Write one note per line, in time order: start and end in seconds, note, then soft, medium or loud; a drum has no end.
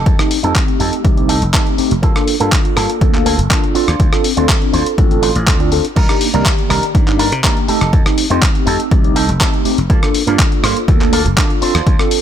0.00 0.31 D#4 medium
0.00 0.31 G4 medium
0.00 0.31 A4 loud
0.06 0.15 F2 loud
0.06 kick loud
0.06 closed hi-hat medium
0.19 0.38 A3 medium
0.19 0.38 C4 medium
0.19 0.38 D#4 medium
0.19 0.38 G4 loud
0.19 cross-stick medium
0.19 closed hi-hat soft
0.30 open hi-hat loud
0.30 maracas medium
0.43 0.52 F2 medium
0.43 1.01 A3 medium
0.43 1.02 C4 medium
0.43 0.55 D#4 medium
0.43 1.02 D#4 medium
0.43 0.55 G4 medium
0.43 1.02 G4 medium
0.43 0.56 A4 medium
0.43 closed hi-hat medium
0.55 kick loud
0.55 clap loud
0.55 closed hi-hat medium
0.68 muted clean electric guitar stroke soft
0.68 closed hi-hat soft
0.80 0.89 F2 loud
0.80 0.93 D#4 medium
0.80 0.93 G4 medium
0.80 0.93 A4 medium
0.80 open hi-hat medium
0.80 maracas loud
0.93 closed hi-hat medium
0.93 maracas soft
1.04 1.44 C2 medium
1.04 1.15 A3 medium
1.04 1.15 C4 medium
1.04 1.15 D#4 medium
1.04 1.16 G4 loud
1.04 muted clean electric guitar stroke soft
1.04 kick loud
1.04 closed hi-hat medium
1.17 1.36 A3 medium
1.17 1.36 C4 medium
1.17 1.36 D#4 medium
1.17 1.36 G4 medium
1.17 closed hi-hat soft
1.28 1.42 D#4 loud
1.28 1.42 G4 medium
1.28 1.42 A4 loud
1.28 open hi-hat loud
1.42 1.50 F1 loud
1.42 closed hi-hat medium
1.53 1.75 A3 loud
1.53 1.75 C4 medium
1.53 1.66 D#4 medium
1.53 1.76 D#4 medium
1.53 1.67 G4 medium
1.53 1.76 G4 loud
1.53 1.67 A4 loud
1.53 kick loud
1.53 clap loud
1.53 closed hi-hat medium
1.67 closed hi-hat soft
1.78 1.91 A3 medium
1.78 1.91 C4 medium
1.78 1.91 D#4 medium
1.78 1.91 G4 medium
1.78 muted clean electric guitar stroke soft
1.78 muted slap bass stroke soft
1.78 open hi-hat medium
1.78 maracas medium
1.91 2.00 F1 loud
1.91 closed hi-hat medium
1.91 maracas soft
2.02 2.12 G2 loud
2.02 2.21 A#3 loud
2.02 2.22 F4 loud
2.02 2.22 A4 loud
2.02 kick loud
2.02 closed hi-hat medium
2.15 2.34 A#3 medium
2.15 2.35 D4 medium
2.15 2.35 F4 medium
2.15 2.35 A4 loud
2.15 cross-stick medium
2.15 closed hi-hat soft
2.28 open hi-hat medium
2.28 maracas medium
2.40 2.49 G2 medium
2.40 2.98 A#3 medium
2.40 2.52 A#3 medium
2.40 2.98 D4 medium
2.40 2.52 F4 medium
2.40 2.99 F4 medium
2.40 2.52 A4 loud
2.40 2.99 A4 medium
2.40 closed hi-hat medium
2.52 kick loud
2.52 clap loud
2.52 closed hi-hat medium
2.65 muted clean electric guitar stroke soft
2.65 closed hi-hat soft
2.76 2.86 G2 medium
2.76 2.89 A#3 medium
2.76 2.90 F4 medium
2.76 2.90 A4 loud
2.76 cross-stick medium
2.76 open hi-hat medium
2.90 closed hi-hat medium
3.01 3.40 D2 medium
3.01 3.12 A#3 medium
3.01 3.12 D4 medium
3.01 3.12 F4 medium
3.01 3.12 A4 loud
3.01 muted clean electric guitar stroke soft
3.01 kick loud
3.01 closed hi-hat medium
3.14 3.33 A#3 medium
3.14 3.33 D4 medium
3.14 3.33 F4 medium
3.14 3.33 A4 medium
3.14 clap soft
3.14 closed hi-hat soft
3.26 3.39 A#3 loud
3.26 3.39 F4 loud
3.26 3.39 A4 loud
3.26 open hi-hat loud
3.26 maracas medium
3.39 3.47 G1 loud
3.39 closed hi-hat medium
3.39 maracas soft
3.50 3.72 A#3 medium
3.50 3.63 A#3 medium
3.50 3.72 D4 medium
3.50 3.63 F4 medium
3.50 3.72 F4 medium
3.50 3.73 A4 loud
3.50 3.64 A4 medium
3.50 kick loud
3.50 clap loud
3.50 closed hi-hat medium
3.64 closed hi-hat soft
3.75 3.87 C4 medium
3.75 4.24 D4 medium
3.75 3.87 D4 medium
3.75 4.24 F4 medium
3.75 3.88 F4 medium
3.75 3.88 A4 medium
3.75 4.24 C5 medium
3.75 muted slap bass stroke soft
3.75 open hi-hat medium
3.75 maracas loud
3.88 3.96 D2 loud
3.88 cross-stick medium
3.88 closed hi-hat medium
4.00 4.09 D2 loud
4.00 kick loud
4.00 closed hi-hat medium
4.12 4.31 C4 loud
4.12 4.31 D4 medium
4.12 4.31 F4 medium
4.12 4.32 A4 loud
4.12 cross-stick medium
4.12 closed hi-hat soft
4.24 open hi-hat loud
4.24 maracas medium
4.36 4.45 D2 medium
4.36 4.95 C4 medium
4.36 4.49 D4 medium
4.36 4.95 D4 medium
4.36 4.49 F4 medium
4.36 4.95 F4 medium
4.36 4.96 A4 medium
4.36 4.49 C5 medium
4.36 closed hi-hat medium
4.49 kick loud
4.49 clap loud
4.49 closed hi-hat medium
4.61 muted clean electric guitar stroke soft
4.61 closed hi-hat soft
4.73 4.83 D2 loud
4.73 4.86 D4 medium
4.73 4.86 F4 medium
4.73 4.87 C5 loud
4.73 open hi-hat medium
4.73 maracas medium
4.86 closed hi-hat medium
4.86 maracas soft
4.98 5.29 A1 medium
4.98 5.09 C4 medium
4.98 5.09 D4 medium
4.98 5.09 F4 medium
4.98 5.09 A4 loud
4.98 muted clean electric guitar stroke soft
4.98 kick loud
4.98 closed hi-hat medium
5.11 5.30 C4 medium
5.11 5.30 D4 medium
5.11 5.30 F4 medium
5.11 5.30 A4 medium
5.11 closed hi-hat soft
5.11 maracas soft
5.22 5.35 D4 loud
5.22 5.36 F4 medium
5.22 5.36 C5 loud
5.22 open hi-hat loud
5.22 maracas medium
5.36 5.47 A1 loud
5.36 closed hi-hat medium
5.36 maracas soft
5.47 5.79 D2 medium
5.47 5.57 C4 medium
5.47 5.60 D4 medium
5.47 5.57 D4 medium
5.47 5.57 F4 medium
5.47 5.60 F4 medium
5.47 5.57 A4 medium
5.47 5.60 C5 medium
5.47 kick loud
5.47 clap loud
5.47 closed hi-hat medium
5.60 5.69 C4 medium
5.60 5.69 D4 medium
5.60 5.69 F4 medium
5.60 5.69 D5 loud
5.60 closed hi-hat soft
5.72 5.84 C4 medium
5.72 5.84 D4 medium
5.72 5.84 F4 medium
5.72 5.85 A4 loud
5.72 muted clean electric guitar stroke soft
5.72 open hi-hat medium
5.72 maracas medium
5.85 closed hi-hat medium
5.85 maracas soft
5.96 6.05 C2 loud
5.96 6.15 D4 loud
5.96 6.15 D#4 medium
5.96 6.15 A#4 loud
5.96 kick loud
5.96 closed hi-hat medium
5.96 crash medium
6.09 6.28 A#3 medium
6.09 6.28 D4 medium
6.09 6.28 D#4 medium
6.09 6.28 G4 loud
6.09 cross-stick medium
6.09 closed hi-hat soft
6.21 open hi-hat loud
6.21 maracas medium
6.33 6.42 C2 medium
6.33 6.92 D#3 medium
6.33 6.92 A#3 medium
6.33 6.45 D4 medium
6.33 6.46 D#4 medium
6.33 6.92 G4 loud
6.33 6.46 A#4 medium
6.33 6.92 D5 medium
6.33 closed hi-hat medium
6.46 kick loud
6.46 clap loud
6.46 closed hi-hat medium
6.58 muted clean electric guitar stroke soft
6.58 closed hi-hat soft
6.70 6.79 C2 medium
6.70 6.83 D4 medium
6.70 6.83 D#4 medium
6.70 6.83 A#4 loud
6.70 cross-stick medium
6.70 open hi-hat medium
6.83 closed hi-hat medium
6.83 maracas soft
6.94 7.32 G2 medium
6.94 7.05 A#3 medium
6.94 7.06 D4 medium
6.94 7.06 D#4 medium
6.94 7.06 G4 loud
6.94 muted clean electric guitar stroke soft
6.94 kick loud
6.94 closed hi-hat medium
7.07 7.26 A#3 medium
7.07 7.26 D4 medium
7.07 7.26 D#4 medium
7.07 7.26 G4 medium
7.07 clap soft
7.07 closed hi-hat soft
7.19 7.32 D4 loud
7.19 7.32 D#4 medium
7.19 7.32 A#4 loud
7.19 open hi-hat loud
7.19 maracas medium
7.32 7.40 C3 loud
7.32 closed hi-hat medium
7.43 7.66 A#3 medium
7.43 7.57 D4 medium
7.43 7.66 D4 medium
7.43 7.57 D#4 medium
7.43 7.66 D#4 medium
7.43 7.66 G4 loud
7.43 7.57 A#4 medium
7.43 kick loud
7.43 clap loud
7.43 closed hi-hat medium
7.57 closed hi-hat soft
7.68 7.81 A3 medium
7.68 7.81 C4 medium
7.68 8.18 D#4 medium
7.68 7.81 D#4 medium
7.68 8.18 G4 medium
7.68 7.81 G4 medium
7.68 8.18 A4 loud
7.68 muted slap bass stroke soft
7.68 open hi-hat medium
7.68 maracas medium
7.81 7.90 F1 loud
7.81 cross-stick medium
7.81 closed hi-hat medium
7.93 kick loud
7.93 closed hi-hat soft
8.06 8.24 A3 medium
8.06 8.25 C4 medium
8.06 8.25 D#4 medium
8.06 8.25 G4 loud
8.06 cross-stick medium
8.06 closed hi-hat soft
8.18 open hi-hat loud
8.18 maracas loud
8.30 8.39 F2 medium
8.30 8.88 A3 medium
8.30 8.89 C4 medium
8.30 8.42 D#4 medium
8.30 8.89 D#4 medium
8.30 8.42 G4 medium
8.30 8.89 G4 medium
8.30 8.43 C5 medium
8.30 closed hi-hat medium
8.30 maracas soft
8.42 kick loud
8.42 clap loud
8.42 closed hi-hat medium
8.55 muted clean electric guitar stroke soft
8.55 closed hi-hat soft
8.66 8.76 F2 loud
8.66 8.80 D#4 medium
8.66 8.80 G4 medium
8.66 8.80 A4 loud
8.66 open hi-hat loud
8.66 maracas loud
8.80 closed hi-hat medium
8.80 maracas soft
8.91 9.30 C2 medium
8.91 9.02 A3 medium
8.91 9.02 C4 medium
8.91 9.03 D#4 medium
8.91 9.03 G4 loud
8.91 muted clean electric guitar stroke soft
8.91 kick loud
8.91 closed hi-hat medium
8.91 maracas soft
9.04 9.23 A3 medium
9.04 9.23 C4 medium
9.04 9.23 D#4 medium
9.04 9.23 G4 medium
9.04 closed hi-hat soft
9.15 9.29 D#4 loud
9.15 9.29 G4 medium
9.15 9.29 A4 loud
9.15 open hi-hat loud
9.15 maracas medium
9.28 9.37 F1 loud
9.28 closed hi-hat medium
9.28 maracas soft
9.40 9.62 A3 medium
9.40 9.62 C4 medium
9.40 9.53 D#4 medium
9.40 9.63 D#4 medium
9.40 9.54 G4 medium
9.40 9.63 G4 loud
9.40 9.54 A4 medium
9.40 kick loud
9.40 clap loud
9.40 closed hi-hat soft
9.54 closed hi-hat soft
9.65 9.78 A3 medium
9.65 9.78 C4 medium
9.65 9.78 D#4 medium
9.65 9.78 G4 medium
9.65 muted clean electric guitar stroke soft
9.65 muted slap bass stroke soft
9.65 open hi-hat loud
9.65 maracas medium
9.77 9.86 F1 loud
9.77 closed hi-hat medium
9.77 maracas soft
9.90 9.99 G2 loud
9.90 10.09 A#3 loud
9.90 10.09 F4 loud
9.90 10.09 A4 loud
9.90 kick loud
9.90 closed hi-hat medium
10.02 10.21 A#3 medium
10.02 10.21 D4 medium
10.02 10.21 F4 medium
10.02 10.22 A4 loud
10.02 cross-stick medium
10.02 closed hi-hat soft
10.14 open hi-hat loud
10.14 maracas medium
10.26 10.35 G2 medium
10.26 10.85 A#3 medium
10.26 10.39 A#3 loud
10.26 10.85 D4 medium
10.26 10.86 F4 medium
10.26 10.39 F4 medium
10.26 10.39 A4 loud
10.26 10.86 A4 loud
10.26 closed hi-hat medium
10.26 maracas soft
10.39 kick loud
10.39 clap loud
10.39 closed hi-hat medium
10.52 muted clean electric guitar stroke soft
10.52 closed hi-hat soft
10.63 10.73 G2 loud
10.63 10.76 A#3 medium
10.63 10.77 F4 medium
10.63 10.77 C5 loud
10.63 cross-stick medium
10.63 open hi-hat medium
10.63 maracas medium
10.77 closed hi-hat soft
10.77 maracas soft
10.88 11.27 D2 medium
10.88 10.99 A#3 medium
10.88 10.99 D4 medium
10.88 10.99 F4 medium
10.88 10.99 A4 loud
10.88 muted clean electric guitar stroke soft
10.88 kick loud
10.88 closed hi-hat medium
10.88 maracas medium
11.00 11.19 A#3 medium
11.00 11.20 D4 medium
11.00 11.20 F4 medium
11.00 11.20 A4 medium
11.00 clap soft
11.00 closed hi-hat soft
11.12 11.26 A#3 loud
11.12 11.26 F4 loud
11.12 11.26 A4 loud
11.12 open hi-hat loud
11.12 maracas loud
11.26 11.34 G1 loud
11.26 closed hi-hat medium
11.26 maracas soft
11.37 11.59 A#3 medium
11.37 11.50 A#3 medium
11.37 11.59 D4 medium
11.37 11.59 F4 medium
11.37 11.50 F4 medium
11.37 11.59 A4 loud
11.37 11.51 A4 medium
11.37 kick loud
11.37 clap loud
11.37 closed hi-hat medium
11.50 closed hi-hat soft
11.61 11.74 C4 medium
11.61 12.11 D4 loud
11.61 11.74 D4 medium
11.61 11.74 F4 medium
11.61 12.11 F4 medium
11.61 11.74 A4 medium
11.61 12.11 C5 loud
11.61 muted slap bass stroke soft
11.61 open hi-hat loud
11.61 maracas loud
11.75 11.83 D2 loud
11.75 cross-stick medium
11.75 closed hi-hat medium
11.87 11.96 D2 loud
11.87 kick loud
11.87 closed hi-hat soft
11.87 maracas soft
11.99 12.18 C4 medium
11.99 12.18 D4 medium
11.99 12.18 F4 medium
11.99 12.18 A4 loud
11.99 cross-stick medium
11.99 closed hi-hat soft
12.11 open hi-hat loud
12.11 maracas medium